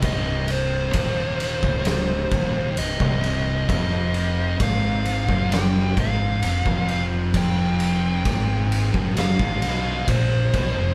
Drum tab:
RD |x-x-x-x-x-x-x-x-|x-x-x-x-x-x-x-x-|x-x-x-x-x-x-x-x-|
SD |--------o-------|--------o-------|--------o-o-----|
BD |o---o--o--o--o--|o---o--o--o--o--|o---o--o-o--o-o-|